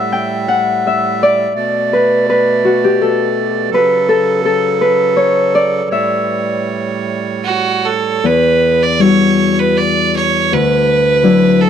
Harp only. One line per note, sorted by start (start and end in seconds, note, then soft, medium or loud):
0.00 0.39 A4 medium
0.00 0.87 E5 medium
0.00 0.18 F#5 medium
0.12 0.54 G5 medium
0.48 2.09 F#5 medium
0.87 2.59 E5 medium
1.23 3.07 D5 medium
1.93 2.29 B4 medium
2.30 3.74 B4 medium
2.65 2.90 F#4 medium
2.84 5.20 G4 medium
3.01 4.08 A4 medium
3.74 4.81 B4 medium
4.09 4.45 A4 medium
4.45 6.65 A4 medium
4.81 6.86 B4 medium
5.17 5.61 C#5 medium
5.55 7.39 D5 medium
5.92 7.81 E5 medium
8.24 10.56 E2 medium
8.99 10.56 G3 soft
8.99 11.23 E4 soft
9.03 11.47 F#4 soft
10.52 11.70 D2 medium
11.23 11.70 F#3 soft
11.23 11.70 D4 soft
11.23 11.70 E4 soft